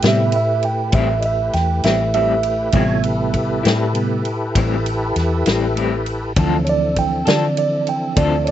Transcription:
0.00 0.90 A2 medium
0.00 2.72 A3 medium
0.00 2.72 E4 medium
0.00 0.21 E4 medium
0.00 2.72 G4 medium
0.00 2.72 B4 medium
0.00 ride medium
0.04 0.31 C3 soft
0.04 0.31 G3 soft
0.04 0.23 G3 soft
0.04 0.32 B3 medium
0.04 0.22 C4 soft
0.04 0.35 E5 medium
0.04 snare loud
0.32 0.64 E5 medium
0.32 ride medium
0.63 0.94 G5 medium
0.63 ride medium
0.92 1.50 A1 medium
0.92 1.12 A2 medium
0.92 1.12 G3 medium
0.92 1.13 C4 medium
0.92 1.13 E4 medium
0.92 1.24 E5 medium
0.92 kick loud
0.92 ride medium
1.21 1.24 D#5 medium
1.21 ride medium
1.26 1.54 E5 medium
1.53 1.82 E2 medium
1.53 1.83 G5 medium
1.53 snare soft
1.53 ride medium
1.84 2.71 A1 loud
1.84 2.04 G3 soft
1.84 2.03 C4 medium
1.84 2.02 E4 medium
1.84 2.13 E5 medium
1.84 snare medium
1.84 ride medium
2.14 2.32 A2 medium
2.14 2.33 G3 medium
2.14 2.33 C4 medium
2.14 2.34 E4 medium
2.14 3.91 E5 medium
2.14 ride medium
2.43 ride medium
2.72 3.61 A1 loud
2.72 2.92 A2 medium
2.72 3.60 C3 soft
2.72 3.60 G3 soft
2.72 2.92 G3 medium
2.72 3.61 B3 soft
2.72 2.93 C4 medium
2.72 2.93 E4 medium
2.72 3.05 F4 medium
2.72 3.03 A4 medium
2.72 3.05 C#5 medium
2.72 3.04 G#5 medium
2.72 kick loud
2.72 ride medium
3.03 6.33 E4 medium
3.03 6.33 G4 medium
3.03 6.33 A4 medium
3.03 6.33 B4 medium
3.03 ride medium
3.34 kick medium
3.34 ride medium
3.63 4.52 A2 medium
3.63 3.84 G3 medium
3.63 3.83 C4 medium
3.63 3.82 E4 medium
3.63 snare loud
3.63 ride medium
3.93 4.21 C3 soft
3.93 4.22 G3 soft
3.93 4.22 B3 soft
3.93 ride medium
4.25 ride medium
4.55 5.12 A1 medium
4.55 4.74 A2 medium
4.55 4.74 G3 medium
4.55 4.74 C4 medium
4.55 4.75 E4 medium
4.55 kick loud
4.55 ride medium
4.86 ride medium
5.16 5.44 E2 medium
5.16 snare soft
5.16 ride medium
5.46 6.33 A1 loud
5.46 5.66 G3 medium
5.46 5.65 C4 medium
5.46 5.64 E4 medium
5.46 snare medium
5.46 ride medium
5.75 5.94 A2 medium
5.75 5.95 G3 medium
5.75 5.95 C4 medium
5.75 5.95 E4 medium
5.75 ride medium
6.06 ride medium
6.36 7.23 D2 medium
6.36 6.55 D3 medium
6.36 8.51 E3 soft
6.36 8.51 F3 soft
6.36 8.51 C4 medium
6.36 6.55 C4 medium
6.36 8.51 C4 medium
6.36 8.51 D4 medium
6.36 8.51 E4 medium
6.36 6.55 F4 medium
6.36 8.51 A4 medium
6.36 6.56 A4 medium
6.36 kick loud
6.36 ride medium
6.65 6.68 C#5 medium
6.65 ride medium
6.69 6.97 D5 medium
6.96 7.27 G5 medium
6.96 kick medium
6.96 ride medium
7.26 8.14 D3 medium
7.26 7.46 C4 soft
7.26 7.45 F4 soft
7.26 7.44 A4 medium
7.26 7.57 D5 medium
7.26 snare loud
7.26 ride medium
7.57 7.87 D5 medium
7.57 ride medium
7.87 8.17 G5 medium
7.87 ride medium
8.17 8.51 D2 loud
8.17 8.35 D3 medium
8.17 8.36 C4 medium
8.17 8.36 F4 medium
8.17 8.36 A4 medium
8.17 8.47 D5 medium
8.17 kick loud
8.17 ride medium
8.44 8.48 C#5 medium
8.44 ride medium

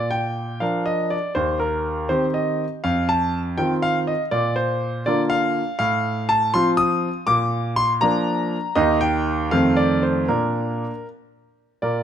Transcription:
0.00 0.59 A#2 medium
0.11 0.61 G5 medium
0.60 1.14 F3 soft
0.60 1.15 D4 soft
0.60 1.15 A#4 soft
0.60 0.83 F5 medium
0.86 1.10 D#5 medium
1.10 1.33 D5 medium
1.35 2.07 D#2 medium
1.35 1.57 C5 medium
1.60 2.09 A#4 medium
2.09 2.63 D#3 soft
2.09 2.63 C4 soft
2.09 2.64 G4 soft
2.09 2.24 C5 medium
2.34 2.64 D#5 medium
2.84 3.56 F2 medium
2.84 3.08 F5 medium
3.09 3.38 A5 medium
3.58 4.11 D#3 soft
3.58 4.11 C4 soft
3.58 4.12 F4 soft
3.58 3.72 G5 medium
3.82 3.97 F5 medium
4.07 4.22 D#5 medium
4.31 5.03 A#2 medium
4.31 4.54 D5 medium
4.56 5.05 C5 medium
5.06 5.59 D3 soft
5.06 5.60 A#3 soft
5.06 5.60 F4 medium
5.06 5.21 D5 medium
5.30 5.77 F5 medium
5.79 6.51 A2 medium
5.79 6.28 F5 medium
6.29 6.51 A5 medium
6.54 7.07 F3 medium
6.54 7.07 C4 soft
6.54 7.08 F4 medium
6.54 6.68 C6 loud
6.77 7.27 D#6 loud
7.27 7.99 A#2 medium
7.27 7.72 D6 loud
7.76 7.91 C6 loud
8.01 8.55 F3 medium
8.01 8.55 A#3 medium
8.01 8.56 D4 medium
8.01 8.76 A#5 loud
8.76 9.49 D#2 medium
8.76 9.47 D#3 medium
8.76 9.48 A#3 soft
8.76 9.48 D#4 medium
8.76 8.98 D#5 medium
9.01 9.47 G5 medium
9.51 10.26 F2 medium
9.51 10.24 D#3 soft
9.51 10.24 A3 soft
9.51 10.25 C4 soft
9.51 9.77 F5 medium
9.77 10.02 D5 medium
10.03 10.28 C5 medium
10.29 10.83 A#2 medium
10.29 10.90 A#3 soft
10.29 10.90 D4 soft
10.29 11.06 A#4 medium
11.82 12.03 A#2 soft
11.82 12.03 A#4 soft
11.82 12.03 D5 medium

